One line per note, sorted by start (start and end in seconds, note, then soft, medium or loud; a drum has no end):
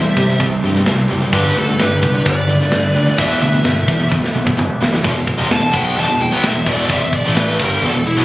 0.00 0.12 E2 medium
0.00 0.15 C3 medium
0.00 1.31 E3 medium
0.00 0.15 G3 medium
0.00 5.01 G3 medium
0.00 1.31 C4 medium
0.00 1.32 A4 medium
0.00 0.38 C5 medium
0.00 0.38 E5 loud
0.17 0.34 C3 medium
0.17 0.29 C3 medium
0.17 0.29 G3 medium
0.17 kick medium
0.17 snare soft
0.30 0.40 C3 medium
0.30 0.40 G3 medium
0.40 0.58 C2 medium
0.40 0.62 C3 medium
0.40 0.62 G3 medium
0.40 kick loud
0.40 crash medium
0.64 0.81 G2 medium
0.64 0.76 C3 medium
0.64 0.76 G3 medium
0.77 0.87 C3 medium
0.77 0.88 G3 medium
0.86 1.04 C2 medium
0.86 1.09 C3 medium
0.86 1.09 G3 medium
0.86 snare loud
0.86 crash medium
1.10 1.28 F#1 medium
1.10 1.21 C3 medium
1.10 1.21 G3 medium
1.22 1.34 C3 medium
1.22 1.33 G3 medium
1.32 1.50 G1 loud
1.32 1.55 G2 loud
1.32 3.17 D3 medium
1.32 1.55 D3 loud
1.32 1.56 G3 loud
1.32 5.01 B3 medium
1.32 5.00 G4 medium
1.32 1.55 G4 medium
1.32 1.56 B4 medium
1.32 kick loud
1.32 crash medium
1.56 1.74 D2 medium
1.56 1.67 G2 medium
1.56 1.67 D3 loud
1.56 1.78 F#4 medium
1.56 1.79 A4 medium
1.68 1.78 G2 medium
1.68 1.78 D3 medium
1.79 1.97 G1 loud
1.79 2.00 G2 medium
1.79 2.01 D3 medium
1.79 2.23 G4 medium
1.79 2.27 B4 medium
1.79 snare loud
1.79 crash medium
2.02 2.20 C2 medium
2.02 2.14 G2 medium
2.02 2.14 D3 medium
2.02 kick medium
2.15 2.24 G2 medium
2.15 2.24 D3 medium
2.25 2.60 G1 medium
2.25 2.47 G2 medium
2.25 2.47 D3 loud
2.25 3.15 B4 medium
2.25 3.15 D5 loud
2.25 kick loud
2.25 crash medium
2.49 2.61 G2 medium
2.49 2.61 D3 medium
2.61 2.72 G2 medium
2.61 2.72 D3 medium
2.61 snare soft
2.72 2.90 G1 medium
2.72 2.94 G2 medium
2.72 2.94 D3 loud
2.72 snare loud
2.72 crash medium
2.95 3.12 D2 medium
2.95 3.08 G2 medium
2.95 3.07 D3 medium
3.08 3.18 G2 medium
3.08 3.19 D3 medium
3.18 3.36 E1 loud
3.18 3.40 E2 loud
3.18 3.40 B2 loud
3.18 3.41 E3 loud
3.18 5.03 E3 medium
3.18 3.41 B4 loud
3.18 3.41 E5 loud
3.18 kick loud
3.18 crash medium
3.41 3.58 D2 loud
3.41 3.52 E2 medium
3.41 3.51 B2 loud
3.41 4.08 B4 medium
3.41 4.08 E5 loud
3.52 3.63 E2 medium
3.52 3.64 B2 medium
3.64 3.82 G1 loud
3.64 3.86 E2 medium
3.64 3.86 B2 medium
3.64 snare loud
3.64 crash medium
3.88 4.05 E2 medium
3.88 3.99 E2 medium
3.88 3.99 B2 medium
3.88 kick medium
3.88 snare soft
4.00 4.11 E2 medium
4.00 4.11 B2 medium
4.12 4.29 E1 medium
4.12 4.33 E2 medium
4.12 4.33 B2 medium
4.12 kick loud
4.12 high tom medium
4.24 snare medium
4.35 4.52 B1 medium
4.35 4.46 E2 medium
4.35 4.45 B2 medium
4.47 4.56 E2 medium
4.47 4.57 B2 medium
4.47 kick medium
4.57 4.75 E1 medium
4.57 4.78 E2 medium
4.57 4.79 B2 medium
4.57 mid tom medium
4.81 4.98 B1 medium
4.81 4.91 E2 medium
4.81 4.91 B2 medium
4.81 snare loud
4.92 5.03 E2 medium
4.92 5.03 B2 medium
4.92 snare medium
5.04 5.14 E1 medium
5.04 5.13 E2 medium
5.04 5.14 B2 loud
5.04 kick loud
5.04 crash medium
5.14 5.37 E1 medium
5.14 5.34 E2 medium
5.14 5.34 B2 medium
5.27 kick medium
5.27 crash medium
5.38 5.50 F1 medium
5.38 5.49 F2 medium
5.38 5.49 C3 medium
5.50 5.62 E1 medium
5.50 5.60 E2 medium
5.50 5.60 B2 medium
5.50 5.74 A5 medium
5.50 snare loud
5.50 crash medium
5.61 5.73 E1 medium
5.61 5.73 E2 medium
5.61 5.70 B2 medium
5.72 5.96 B1 medium
5.72 5.95 B2 medium
5.72 5.96 F#3 medium
5.72 5.96 B3 loud
5.72 kick medium
5.72 crash medium
5.76 5.98 G5 medium
5.96 6.08 E1 medium
5.96 6.07 E2 medium
5.96 6.08 B2 loud
5.96 6.21 A5 medium
5.96 crash medium
6.08 6.19 E1 medium
6.08 6.18 E2 medium
6.08 6.19 B2 medium
6.20 6.30 E1 medium
6.20 6.32 E2 medium
6.20 6.30 B2 medium
6.20 6.43 G5 medium
6.20 crash medium
6.31 6.53 B1 medium
6.31 6.53 B2 medium
6.31 6.54 F#3 medium
6.31 6.55 B3 medium
6.43 6.68 E5 medium
6.43 snare loud
6.43 crash medium
6.54 6.65 E1 medium
6.54 6.65 E2 medium
6.54 6.66 B2 medium
6.66 6.88 E1 medium
6.66 6.89 E2 medium
6.66 6.89 B2 medium
6.66 6.90 E3 loud
6.66 6.91 D5 medium
6.66 kick medium
6.66 crash medium
6.89 7.00 F1 medium
6.89 7.01 F2 loud
6.89 7.01 C3 loud
6.89 7.14 E5 medium
6.89 kick loud
6.89 crash medium
7.01 7.23 E1 medium
7.01 7.21 E2 medium
7.01 7.21 B2 medium
7.13 7.37 D5 medium
7.13 kick medium
7.13 crash medium
7.24 7.57 A1 medium
7.24 7.59 A2 medium
7.24 7.60 E3 medium
7.24 7.60 A3 medium
7.37 7.61 B4 medium
7.37 snare loud
7.37 crash medium
7.59 7.81 G1 medium
7.59 7.81 G2 medium
7.59 7.82 D3 medium
7.59 7.82 G3 loud
7.59 kick medium
7.59 crash medium
7.63 7.84 A#4 medium
7.82 7.93 E1 medium
7.82 7.94 E2 medium
7.82 7.94 B2 loud
7.82 8.06 A4 medium
7.82 crash medium
7.94 8.16 E1 medium
7.94 8.13 E2 medium
7.94 8.13 B2 medium
8.06 8.25 E4 medium
8.06 crash medium
8.17 8.25 B1 medium
8.17 8.25 B2 medium
8.17 8.25 F#3 medium
8.17 8.25 B3 loud